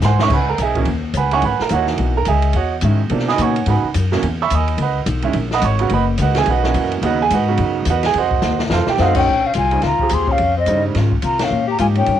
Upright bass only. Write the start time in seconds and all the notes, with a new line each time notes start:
0.02 G#2
0.30 C#2
0.58 B1
0.86 D#2
1.14 C#2
1.42 G#1
1.60 muted upright bass stroke
1.71 D#2
1.99 B1
2.27 C#2
2.54 E2
2.82 G#2
3.10 B2
3.38 A#2
3.66 G#2
3.84 muted upright bass stroke
3.95 F#2
4.22 E2
4.51 D#2
4.78 C#2
5.06 B1
5.34 A#1
5.62 G#1
5.91 F#1
6.19 C#2
6.47 B1
6.74 F#2
7.02 D#2
7.31 G#2
7.59 F#2
7.86 E2
8.14 F2
8.42 D#2
8.70 F2
8.87 muted upright bass stroke
8.99 F#2
9.27 A#1
9.55 C2
9.83 C#2
9.99 muted upright bass stroke
10.11 D#2
10.39 F2
10.66 G2
10.95 G#2
11.23 C3
11.51 A#2
11.79 G#2
12.07 G2